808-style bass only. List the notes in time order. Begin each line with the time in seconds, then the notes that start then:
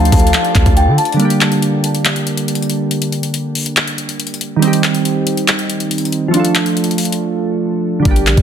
Already playing: D2
0.12 D2
0.55 D2
0.66 D2
0.87 D3
8.05 G1
8.27 A#1
8.37 G1